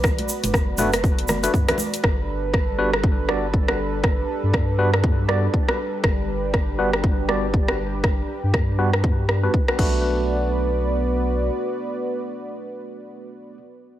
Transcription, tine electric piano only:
X:1
M:4/4
L:1/16
Q:"Swing 16ths" 1/4=120
K:Bm
V:1 name="Tine electric piano"
z6 [A,B,DFB] z4 [A,B,DFB] z [A,B,DFB] z2 | z6 [G,B,DFB] z3 [G,B,DFd] z2 [G,B,DFB] z2 | z6 [G,B,DFB] z3 [G,B,DFd] z2 [G,B,DFB] z2 | z6 [G,B,DFB] z3 [G,B,DFd] z2 [G,B,DFB] z2 |
z6 [G,B,DFB] z4 [G,B,DFB] z [G,B,DFB] [A,B,DFB]2- | [A,B,DFB]16- | [A,B,DFB]16 |]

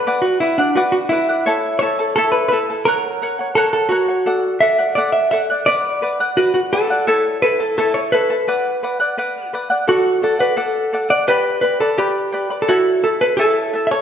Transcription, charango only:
X:1
M:2/4
L:1/16
Q:1/4=86
K:Bm
V:1 name="Charango"
[Bdf]2 [Bdf] [df] [Bdf]2 [Bdf] [df] | [EAcea]2 [EAea] [EAa] [EAcea]2 [EAea] [EAa] | [^Acf]2 [Acf] [cf] [Acf]2 [Acf] [cf] | [Adf]2 [Adf] [df] [Adf]2 [Adf] [df] |
[Bdf]2 [Bdf] [df] [Bdf]2 [Bdf] [df] | [EAcea]2 [EAea] [EAa] [EAcea]2 [EAea] [EAa] | [Bdf]2 [Bdf] [df] [Bdf]2 [Bdf] [df] | [Adf]2 [Adf] [df] [Adf]2 [Adf] [df] |
[GBdgb]2 [Bdgb] [Bdb] [GBdgb]2 [Bdgb] [Bdb] | [EAcea]2 [EAea] [EAa] [EAcea]2 [EAea] [EAa] |]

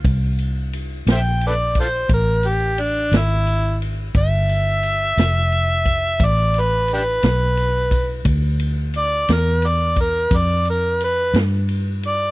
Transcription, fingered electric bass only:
X:1
M:12/8
L:1/8
Q:3/8=58
K:Gmix
V:1 name="Fingered electric bass" clef=bass
C,,3 _B,,,3 A,,,3 _A,,,3 | G,,,3 F,,,3 A,,,3 B,,,3 | D,,3 E,,3 F,,3 G,,3 |]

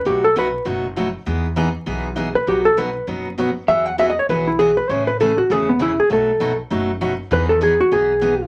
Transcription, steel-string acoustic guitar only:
X:1
M:4/4
L:1/8
Q:"Swing" 1/4=198
K:E
V:1 name="Steel-string acoustic guitar"
[B,,F,A,DF] z [B,,F,A,DF] z [B,,F,A,DF] z [B,,F,A,DF] z | [E,B,DG] z [E,B,DG] z [E,B,DG] z [E,B,DG] z | [B,,F,B,DF] z [B,,F,B,DF] z [B,,F,B,DF] z [B,,F,B,DF] z | [E,F,B,FG] z [E,F,B,FG] z [E,F,B,FG] z [E,F,B,FG] z |
[C,E,A,CG] z [C,E,A,CG] z [C,E,A,CG] z [C,E,A,CG] z | [B,,F,A,DF] z [B,,F,A,DF] z [B,,F,A,DF] z [B,,F,A,DF] z | [E,B,DG] z [E,B,DG] z [E,B,DG] z [E,B,DG] z |]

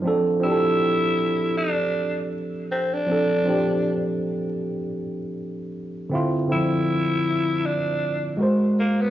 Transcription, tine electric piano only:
X:1
M:4/4
L:1/8
Q:"Swing 16ths" 1/4=79
K:F
V:1 name="Tine electric piano"
[F,CDA] [F,CDGA]3 z4 | [F,CDA] [F,CDG]3 z4 | [D,CEF] [D,F,CE]3 z2 [^G,^F^A^B]2 |]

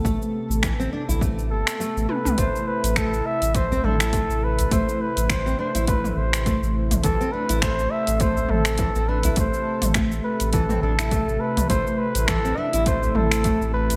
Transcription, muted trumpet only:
X:1
M:4/4
L:1/8
Q:"Swing 16ths" 1/4=103
K:Am
V:1 name="Muted trumpet"
z4 z A2 B | c B A e c A2 B | c B c c B c2 z | A B c e c A2 B |
c2 z B A A2 B | c B A e c A2 B |]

